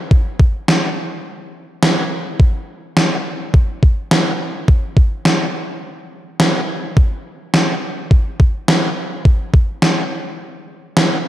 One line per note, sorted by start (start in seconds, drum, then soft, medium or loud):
0.11 kick loud
0.40 kick medium
0.68 snare loud
1.83 snare loud
2.40 kick loud
2.97 snare loud
3.54 kick medium
3.83 kick medium
4.11 snare loud
4.68 kick loud
4.97 kick loud
5.25 snare loud
6.40 snare loud
6.97 kick loud
7.54 snare loud
8.11 kick medium
8.40 kick medium
8.68 snare loud
9.25 kick loud
9.54 kick medium
9.82 snare loud
10.97 snare loud